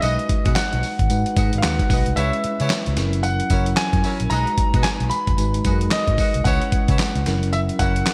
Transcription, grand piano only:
0.01 0.51 D#5 loud
0.55 1.53 F#5 loud
1.58 1.63 F5 medium
1.63 2.13 F#5 medium
2.16 3.27 E5 loud
3.23 3.79 F#5 loud
3.77 4.32 G#5 loud
4.30 4.80 A#5 loud
4.83 4.89 G#5 loud
5.10 5.93 B5 loud
5.91 6.41 D#5 loud
6.44 7.48 F#5 loud
7.53 7.59 E5 loud
7.79 8.14 F#5 loud

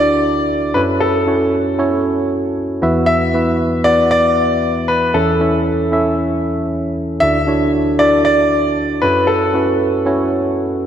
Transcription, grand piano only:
0.00 0.77 D5 loud
0.74 0.80 B4 medium
1.00 2.00 A4 medium
3.06 3.55 E5 loud
3.84 4.09 D5 loud
4.11 4.91 D5 loud
4.88 5.15 B4 medium
5.14 6.14 A4 medium
7.20 7.69 E5 loud
7.99 8.23 D5 loud
8.25 9.05 D5 loud
9.02 9.29 B4 loud
9.27 10.27 A4 medium

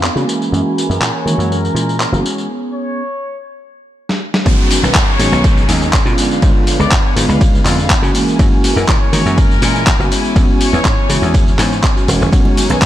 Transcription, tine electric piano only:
0.16 0.49 E3 medium
0.16 0.49 G#3 medium
0.16 0.50 A#3 medium
0.16 0.50 C#4 medium
0.16 0.50 F#4 medium
0.52 0.86 E3 medium
0.52 0.87 G#3 medium
0.52 0.87 A#3 medium
0.52 0.87 C#4 medium
0.52 0.87 F#4 loud
0.90 1.01 E3 medium
0.90 1.02 G#3 medium
0.90 1.02 A#3 medium
0.90 1.02 C#4 medium
0.90 1.02 A#4 medium
1.26 1.72 E3 medium
1.26 1.73 G#3 medium
1.26 1.73 A#3 medium
1.26 1.73 C#4 medium
1.26 1.73 F#4 medium
1.76 1.95 E3 medium
1.76 1.95 G#3 medium
1.76 1.95 A#3 medium
1.76 1.95 C#4 medium
1.76 1.95 E4 medium
2.13 2.46 E3 medium
2.13 2.46 G#3 medium
2.13 2.46 B3 medium
2.13 2.46 C#4 medium
2.13 2.47 F#4 medium
4.45 4.80 D#3 loud
4.45 4.80 G#3 medium
4.45 4.80 B3 medium
4.45 4.80 C#4 medium
4.45 4.80 F#4 loud
4.83 4.95 D#3 medium
4.83 4.95 G#3 medium
4.83 4.95 B3 medium
4.83 4.95 C#4 medium
4.83 4.95 B4 medium
5.19 5.66 D#3 medium
5.19 5.66 G#3 medium
5.19 5.66 B3 medium
5.19 5.66 C#4 medium
5.19 5.66 F#4 loud
5.68 5.88 D#3 medium
5.68 5.88 G#3 medium
5.68 5.88 B3 medium
5.68 5.88 C#4 medium
5.68 5.89 D#4 medium
6.06 6.39 D3 medium
6.06 6.40 G#3 medium
6.06 6.40 B3 medium
6.06 6.40 C#4 medium
6.06 6.40 F4 loud
6.42 6.77 D3 medium
6.42 6.77 G#3 medium
6.42 6.77 B3 medium
6.42 6.77 F4 loud
6.42 6.77 C#5 medium
6.80 6.92 D3 medium
6.80 6.92 G#3 medium
6.80 6.92 B3 medium
6.80 6.92 C#4 medium
6.80 6.92 B4 medium
7.17 7.63 D3 medium
7.17 7.63 G#3 medium
7.17 7.63 B3 medium
7.17 7.63 F4 medium
7.17 7.63 C#5 medium
7.65 7.85 D3 medium
7.65 7.85 G#3 medium
7.65 7.85 B3 medium
7.65 7.85 C#4 medium
7.65 7.85 F4 medium
8.02 8.36 E3 medium
8.02 8.36 G#3 medium
8.02 8.36 A#3 medium
8.02 8.36 C#4 medium
8.02 8.36 F#4 loud
8.39 8.73 E3 loud
8.39 8.74 G#3 medium
8.39 8.74 A#3 medium
8.39 8.74 C#4 medium
8.39 8.74 F#4 loud
8.76 8.88 E3 medium
8.76 8.88 G#3 medium
8.76 8.88 A#3 medium
8.76 8.88 C#4 medium
8.76 8.88 A#4 medium
9.13 9.59 E3 medium
9.13 9.59 G#3 medium
9.13 9.59 A#3 medium
9.13 9.59 C#4 medium
9.13 9.59 F#4 loud
9.62 9.82 E3 medium
9.62 9.82 G#3 medium
9.62 9.82 A#3 medium
9.62 9.82 C#4 medium
9.62 9.82 E4 medium
9.99 10.33 E3 medium
9.99 10.33 G#3 medium
9.99 10.33 B3 medium
9.99 10.33 C#4 medium
9.99 10.33 F#4 loud
10.35 10.70 E3 medium
10.35 10.70 G#3 medium
10.35 10.70 B3 medium
10.35 10.70 C#4 medium
10.35 10.70 F#4 loud
10.72 10.85 E3 medium
10.72 10.85 G#3 medium
10.72 10.85 B3 medium
10.72 10.85 C#4 medium
10.72 10.85 B4 medium
11.09 11.56 E3 medium
11.09 11.56 G#3 medium
11.09 11.56 B3 medium
11.09 11.56 C#4 medium
11.09 11.56 F#4 loud
11.58 11.78 E3 medium
11.58 11.78 G#3 medium
11.58 11.78 B3 medium
11.58 11.78 C#4 medium
11.58 11.79 E4 medium
11.95 12.29 E3 medium
11.95 12.29 G#3 medium
11.95 12.30 B3 medium
11.95 12.30 C#4 medium
11.95 12.30 F#4 medium
12.32 12.67 D#3 medium
12.32 12.67 G#3 medium
12.32 12.67 B3 medium
12.32 12.67 C#4 medium
12.32 12.67 F#4 loud
12.69 12.81 D#3 medium
12.69 12.81 G#3 medium
12.69 12.82 B3 medium
12.69 12.82 C#4 medium
12.69 12.82 B4 medium

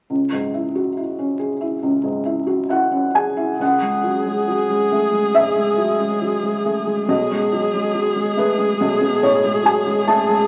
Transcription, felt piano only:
0.10 1.79 C#2 soft
0.32 0.67 G#2 soft
0.54 0.89 E4 soft
0.75 0.97 F#4 soft
0.97 1.32 E4 soft
1.19 1.53 C#4 soft
1.39 1.74 G#4 soft
1.61 1.96 E4 soft
1.83 3.55 C#2 soft
2.04 2.39 G#2 soft
2.25 2.60 E4 soft
2.47 2.69 F#4 soft
2.69 3.05 E4 soft
2.69 3.12 F#5 medium
2.91 3.28 C#4 soft
3.15 3.51 G#4 soft
3.15 3.57 G#5 medium
3.37 3.59 E4 soft
3.59 5.31 C#2 soft
3.59 5.32 F#5 medium
3.81 4.17 G#3 soft
4.04 4.26 F#3 soft
4.26 4.61 G#3 soft
4.48 4.70 F#3 soft
4.69 5.04 G#3 soft
4.92 5.13 A3 soft
5.13 5.48 G#3 soft
5.34 5.69 G#2 soft
5.34 7.04 E5 medium
5.56 5.91 G#3 soft
5.78 6.00 F#3 soft
6.00 6.35 G#3 soft
6.22 6.43 F#3 soft
6.43 6.78 G#3 soft
6.65 6.87 A3 soft
6.87 7.08 G#3 soft
7.08 8.76 B1 soft
7.08 8.33 D#5 medium
7.31 7.65 G#3 soft
7.53 7.73 F#3 soft
7.74 8.08 G#3 soft
7.95 8.16 F#3 soft
8.16 8.50 G#3 soft
8.37 8.58 A3 soft
8.37 9.19 B4 medium
8.58 8.92 G#3 soft
8.81 10.45 B1 soft
9.01 9.35 B2 soft
9.23 9.44 A2 soft
9.23 9.62 C#5 medium
9.44 9.78 G#3 soft
9.63 9.85 F#3 soft
9.63 10.04 G#5 medium
9.86 10.20 G#3 soft
10.07 10.28 A3 soft
10.07 10.46 A5 medium
10.28 10.47 G#3 soft

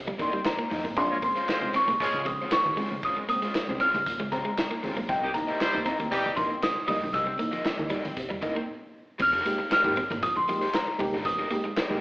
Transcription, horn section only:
1.09 1.17 G#3 medium
1.09 1.17 C#4 medium
1.09 1.17 F4 medium
1.09 1.17 C#5 medium
1.36 1.46 G#3 medium
1.36 1.46 C4 medium
1.36 1.46 F4 medium
1.36 1.46 C5 medium
1.48 1.69 G#3 loud
1.48 1.69 C4 loud
1.48 1.69 F4 loud
1.48 1.69 C5 loud
2.00 2.21 F3 loud
2.00 2.21 G#3 loud
2.00 2.21 C#4 loud
2.00 2.21 G#4 loud
5.22 5.30 A#3 medium
5.22 5.30 D#4 medium
5.22 5.30 G4 medium
5.22 5.30 D#5 medium
5.49 5.59 G3 medium
5.49 5.58 C4 medium
5.49 5.59 E4 medium
5.49 5.58 C5 medium
5.60 5.81 G3 loud
5.60 5.81 C4 loud
5.60 5.81 E4 loud
5.60 5.81 C5 loud
6.11 6.32 E3 loud
6.11 6.32 G3 loud
6.11 6.32 D#4 loud
6.11 6.32 G4 loud

